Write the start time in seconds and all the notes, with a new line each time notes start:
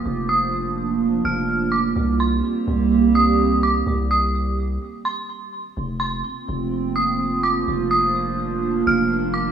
Already playing: D#3 F3 A#3 F4
0.06 F1 D4
0.29 D#6
1.25 F1 F6
1.72 D6
1.96 C2 G3 A#3 C4 G4
2.20 C6
2.67 C2
3.15 D#6
3.63 D6
3.87 C2
4.11 D#6
5.05 C6
5.77 F1 D#3 F3 A#3 C4 F4
6.00 C6
6.49 F1
6.96 D#6
7.43 D6
7.68 F1 D4
7.91 D#6
8.87 F1 F6
9.34 D6